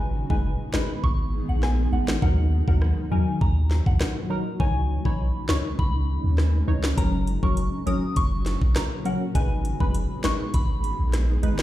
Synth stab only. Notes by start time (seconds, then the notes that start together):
Already playing: G#3 D#4 B4
0.30 G#3 D#4 B4
0.74 G#3 D#4 B4
2.22 F#3 D#4 A#4
2.68 F#3 D#4 A#4
3.11 F#3 D#4 A#4
4.30 F#3 D#4 A#4
4.60 E3 D#4 C#5
5.05 E3 D#4 C#5
5.49 E3 D#4 C#5
6.67 E3 D#4 C#5
6.97 F#3 C#4 A#4
7.43 F#3 C#4 A#4
7.86 F#3 C#4 A#4
9.05 F#3 C#4 A#4
9.35 G#3 D#4 B4
9.80 G#3 D#4 B4
10.24 G#3 D#4 B4
11.43 G#3 D#4 B4